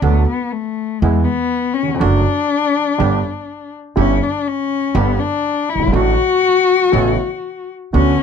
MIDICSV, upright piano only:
0, 0, Header, 1, 2, 480
1, 0, Start_track
1, 0, Key_signature, 2, "major"
1, 0, Tempo, 494641
1, 31, Time_signature, 4, 2, 24, 8
1, 7984, End_track
2, 0, Start_track
2, 0, Title_t, "Upright piano"
2, 0, Program_c, 0, 0
2, 24, Note_on_c, 0, 50, 76
2, 24, Note_on_c, 0, 59, 59
2, 25, Note_on_c, 0, 38, 68
2, 25, Note_on_c, 0, 54, 64
2, 30, Note_on_c, 0, 62, 52
2, 31, Note_on_c, 0, 69, 74
2, 231, Note_off_c, 0, 50, 0
2, 231, Note_off_c, 0, 59, 0
2, 232, Note_off_c, 0, 38, 0
2, 232, Note_off_c, 0, 54, 0
2, 234, Note_off_c, 0, 62, 0
2, 235, Note_off_c, 0, 69, 0
2, 991, Note_on_c, 0, 56, 62
2, 992, Note_on_c, 0, 52, 79
2, 993, Note_on_c, 0, 40, 73
2, 996, Note_on_c, 0, 68, 69
2, 997, Note_on_c, 0, 59, 65
2, 1196, Note_off_c, 0, 56, 0
2, 1197, Note_off_c, 0, 40, 0
2, 1197, Note_off_c, 0, 52, 0
2, 1198, Note_off_c, 0, 59, 0
2, 1198, Note_off_c, 0, 68, 0
2, 1771, Note_on_c, 0, 39, 45
2, 1822, Note_on_c, 0, 40, 55
2, 1832, Note_off_c, 0, 39, 0
2, 1886, Note_on_c, 0, 41, 74
2, 1888, Note_off_c, 0, 40, 0
2, 1940, Note_on_c, 0, 54, 85
2, 1941, Note_on_c, 0, 50, 73
2, 1944, Note_on_c, 0, 57, 63
2, 1946, Note_on_c, 0, 42, 78
2, 1948, Note_on_c, 0, 66, 72
2, 1949, Note_off_c, 0, 41, 0
2, 2147, Note_off_c, 0, 50, 0
2, 2148, Note_off_c, 0, 54, 0
2, 2148, Note_off_c, 0, 57, 0
2, 2149, Note_off_c, 0, 42, 0
2, 2150, Note_off_c, 0, 66, 0
2, 2893, Note_on_c, 0, 50, 62
2, 2894, Note_on_c, 0, 43, 85
2, 2895, Note_on_c, 0, 31, 81
2, 2897, Note_on_c, 0, 55, 64
2, 2897, Note_on_c, 0, 59, 60
2, 2902, Note_on_c, 0, 67, 75
2, 3098, Note_off_c, 0, 43, 0
2, 3098, Note_off_c, 0, 50, 0
2, 3099, Note_off_c, 0, 31, 0
2, 3100, Note_off_c, 0, 55, 0
2, 3100, Note_off_c, 0, 59, 0
2, 3103, Note_off_c, 0, 67, 0
2, 3840, Note_on_c, 0, 59, 64
2, 3841, Note_on_c, 0, 31, 80
2, 3841, Note_on_c, 0, 50, 69
2, 3846, Note_on_c, 0, 43, 79
2, 3846, Note_on_c, 0, 55, 69
2, 3846, Note_on_c, 0, 64, 71
2, 4049, Note_off_c, 0, 31, 0
2, 4049, Note_off_c, 0, 50, 0
2, 4049, Note_off_c, 0, 59, 0
2, 4051, Note_off_c, 0, 43, 0
2, 4051, Note_off_c, 0, 55, 0
2, 4051, Note_off_c, 0, 64, 0
2, 4797, Note_on_c, 0, 50, 62
2, 4797, Note_on_c, 0, 55, 71
2, 4800, Note_on_c, 0, 67, 79
2, 4802, Note_on_c, 0, 31, 80
2, 4802, Note_on_c, 0, 59, 62
2, 4805, Note_on_c, 0, 43, 81
2, 5005, Note_off_c, 0, 50, 0
2, 5005, Note_off_c, 0, 55, 0
2, 5006, Note_off_c, 0, 67, 0
2, 5007, Note_off_c, 0, 31, 0
2, 5007, Note_off_c, 0, 59, 0
2, 5009, Note_off_c, 0, 43, 0
2, 5580, Note_on_c, 0, 30, 54
2, 5626, Note_on_c, 0, 31, 67
2, 5644, Note_off_c, 0, 30, 0
2, 5696, Note_on_c, 0, 32, 78
2, 5697, Note_off_c, 0, 31, 0
2, 5742, Note_on_c, 0, 50, 73
2, 5749, Note_on_c, 0, 33, 79
2, 5750, Note_on_c, 0, 54, 67
2, 5751, Note_on_c, 0, 45, 79
2, 5752, Note_on_c, 0, 57, 66
2, 5754, Note_on_c, 0, 66, 78
2, 5762, Note_off_c, 0, 32, 0
2, 5957, Note_off_c, 0, 50, 0
2, 5961, Note_off_c, 0, 33, 0
2, 5961, Note_off_c, 0, 45, 0
2, 5961, Note_off_c, 0, 54, 0
2, 5962, Note_off_c, 0, 57, 0
2, 5963, Note_off_c, 0, 66, 0
2, 6715, Note_on_c, 0, 49, 64
2, 6716, Note_on_c, 0, 33, 79
2, 6718, Note_on_c, 0, 45, 78
2, 6718, Note_on_c, 0, 64, 71
2, 6720, Note_on_c, 0, 57, 60
2, 6720, Note_on_c, 0, 59, 66
2, 6926, Note_off_c, 0, 49, 0
2, 6927, Note_off_c, 0, 33, 0
2, 6928, Note_off_c, 0, 45, 0
2, 6928, Note_off_c, 0, 64, 0
2, 6929, Note_off_c, 0, 57, 0
2, 6929, Note_off_c, 0, 59, 0
2, 7693, Note_on_c, 0, 50, 75
2, 7697, Note_on_c, 0, 57, 60
2, 7698, Note_on_c, 0, 38, 76
2, 7698, Note_on_c, 0, 59, 68
2, 7704, Note_on_c, 0, 66, 74
2, 7905, Note_off_c, 0, 57, 0
2, 7906, Note_off_c, 0, 38, 0
2, 7906, Note_off_c, 0, 59, 0
2, 7907, Note_off_c, 0, 50, 0
2, 7909, Note_off_c, 0, 66, 0
2, 7984, End_track
0, 0, End_of_file